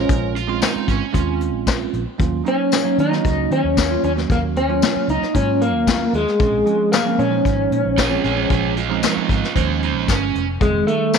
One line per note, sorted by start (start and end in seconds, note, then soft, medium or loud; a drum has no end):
0.00 0.39 G#3 medium
0.00 0.31 C#4 medium
0.00 0.40 C#4 medium
0.00 0.40 F4 medium
0.00 0.34 A#4 medium
0.00 0.40 C5 medium
0.09 0.62 A#1 medium
0.09 kick loud
0.09 closed hi-hat medium
0.36 0.61 F4 medium
0.36 closed hi-hat medium
0.48 1.03 G#3 medium
0.48 1.04 C4 medium
0.48 1.04 C#4 medium
0.48 1.04 F4 loud
0.62 0.88 D#4 medium
0.62 snare loud
0.62 closed hi-hat medium
0.62 tambourine loud
0.75 muted fingered electric bass stroke soft
0.88 0.99 G#1 medium
0.88 1.39 C#4 medium
0.88 kick medium
0.88 closed hi-hat medium
1.13 1.53 D#2 medium
1.13 2.02 G#3 medium
1.13 2.02 C4 medium
1.13 2.02 C#4 medium
1.13 2.02 F4 loud
1.13 kick medium
1.13 closed hi-hat medium
1.41 closed hi-hat medium
1.53 1.85 A#1 medium
1.67 kick medium
1.67 snare loud
1.67 closed hi-hat medium
1.67 tambourine medium
1.93 2.04 A#1 medium
1.93 closed hi-hat medium
2.18 2.40 D#2 loud
2.18 2.41 F#3 medium
2.18 2.41 A#3 medium
2.18 2.41 C#4 medium
2.18 2.42 F4 medium
2.18 kick loud
2.18 closed hi-hat medium
2.44 2.78 F#3 medium
2.44 2.78 A#3 medium
2.44 2.78 C#4 medium
2.44 2.79 D#4 medium
2.44 closed hi-hat medium
2.48 3.00 C#4 loud
2.72 snare loud
2.72 closed hi-hat medium
2.72 tambourine loud
2.84 3.06 F#3 medium
2.84 3.06 A#3 medium
2.84 3.07 C#4 medium
2.84 3.07 D#4 medium
2.98 3.19 D#3 medium
2.98 3.52 D#4 medium
2.98 closed hi-hat medium
3.10 3.77 F#3 medium
3.10 3.77 A#3 medium
3.10 3.77 C#4 medium
3.10 3.77 F#4 medium
3.10 snare soft
3.25 3.46 C#2 loud
3.25 kick medium
3.25 closed hi-hat medium
3.50 3.61 D#3 medium
3.50 4.03 C#4 loud
3.50 closed hi-hat medium
3.64 3.95 D#2 medium
3.77 kick medium
3.77 snare loud
3.77 closed hi-hat medium
3.77 tambourine loud
3.89 4.11 F#3 medium
3.89 4.12 A#3 medium
3.89 4.12 C#4 medium
3.89 4.12 F4 medium
4.03 4.24 D#2 medium
4.03 4.11 C#4 medium
4.03 closed hi-hat medium
4.16 4.60 F#3 medium
4.16 4.60 A#3 medium
4.16 4.60 C#4 medium
4.16 4.61 F#4 medium
4.16 snare soft
4.30 4.83 D#2 medium
4.30 4.39 A#3 medium
4.30 kick loud
4.30 closed hi-hat medium
4.56 5.10 C#4 loud
4.56 closed hi-hat medium
4.68 5.24 F#3 medium
4.68 5.24 A#3 medium
4.68 5.24 C#4 medium
4.68 5.24 F4 medium
4.82 snare loud
4.82 closed hi-hat medium
4.82 tambourine loud
4.95 muted fingered electric bass stroke soft
5.08 5.19 C#2 medium
5.08 5.34 D#4 medium
5.08 closed hi-hat medium
5.23 snare soft
5.34 5.74 G#2 medium
5.34 6.23 F#3 medium
5.34 6.23 A#3 medium
5.34 6.23 C#4 medium
5.34 5.62 C#4 medium
5.34 6.23 F4 medium
5.34 kick medium
5.34 closed hi-hat medium
5.61 6.15 A#3 medium
5.61 closed hi-hat medium
5.74 6.05 D#2 medium
5.87 kick medium
5.87 snare loud
5.87 closed hi-hat medium
5.87 tambourine loud
6.13 6.24 D#2 medium
6.13 6.92 G#3 medium
6.13 closed hi-hat medium
6.28 snare soft
6.39 6.61 A#1 medium
6.39 6.61 F3 medium
6.39 6.62 G#3 medium
6.39 6.62 C4 medium
6.39 6.62 C#4 medium
6.39 kick loud
6.39 closed hi-hat medium
6.65 6.98 F3 medium
6.65 6.99 G#3 medium
6.65 6.99 C4 medium
6.65 6.99 C#4 medium
6.65 closed hi-hat medium
6.92 7.19 A#3 medium
6.92 snare loud
6.92 closed hi-hat medium
6.92 tambourine loud
7.05 7.27 F3 medium
7.05 7.27 G#3 medium
7.05 7.27 C4 medium
7.05 7.28 C#4 medium
7.18 7.39 A#2 medium
7.18 8.73 C#4 medium
7.18 closed hi-hat medium
7.30 7.97 F3 medium
7.30 7.97 G#3 medium
7.30 7.98 D#4 medium
7.30 7.98 C5 medium
7.45 7.66 G#1 medium
7.45 kick medium
7.45 closed hi-hat medium
7.71 7.82 A#2 medium
7.71 closed hi-hat medium
7.85 8.16 A#1 medium
7.98 8.23 F4 medium
7.98 8.23 G#4 medium
7.98 kick medium
7.98 snare loud
7.98 closed hi-hat medium
7.98 tambourine loud
8.10 8.32 F3 medium
8.10 8.32 G#3 medium
8.10 8.33 C4 medium
8.10 8.33 C#4 medium
8.24 8.45 A#1 medium
8.24 8.48 F4 medium
8.24 8.50 G#4 medium
8.24 closed hi-hat medium
8.36 8.80 F3 medium
8.36 8.81 G#3 medium
8.36 8.81 C#4 medium
8.36 8.81 C5 medium
8.50 9.03 A#1 medium
8.50 8.75 F4 medium
8.50 8.76 G#4 medium
8.50 kick loud
8.50 closed hi-hat medium
8.77 9.01 C#4 medium
8.77 9.02 F4 medium
8.77 closed hi-hat medium
8.89 9.44 F3 medium
8.89 9.45 G#3 medium
8.89 9.45 C4 medium
8.89 9.45 D#4 loud
9.03 9.28 C#4 medium
9.03 9.29 F4 medium
9.03 snare loud
9.03 closed hi-hat medium
9.03 tambourine loud
9.17 muted fingered electric bass stroke soft
9.29 9.40 G#1 medium
9.29 9.54 C#4 medium
9.29 9.55 F4 medium
9.29 kick medium
9.29 closed hi-hat medium
9.44 snare soft
9.55 9.95 D#2 loud
9.55 10.43 F3 medium
9.55 10.44 G#3 medium
9.55 9.80 A#3 medium
9.55 10.44 C#4 loud
9.55 9.81 D#4 loud
9.55 10.44 C5 medium
9.55 kick medium
9.55 closed hi-hat medium
9.82 10.07 A#3 medium
9.82 10.08 D#4 medium
9.82 closed hi-hat medium
9.95 10.06 A#1 medium
10.08 10.32 G1 medium
10.08 10.47 C#4 loud
10.08 kick medium
10.08 snare loud
10.08 closed hi-hat medium
10.08 tambourine loud
10.35 10.58 F1 medium
10.35 closed hi-hat medium
10.60 10.82 F1 medium
10.60 10.83 D#3 medium
10.60 10.83 G3 medium
10.60 10.87 G#3 medium
10.60 10.83 A3 medium
10.60 10.83 C4 medium
10.60 kick loud
10.60 closed hi-hat medium
10.86 11.18 D#3 medium
10.86 11.18 G3 medium
10.86 11.18 A3 medium
10.86 11.18 A3 loud
10.86 11.18 D#4 medium
10.86 closed hi-hat medium
11.14 snare loud
11.14 closed hi-hat medium
11.14 tambourine loud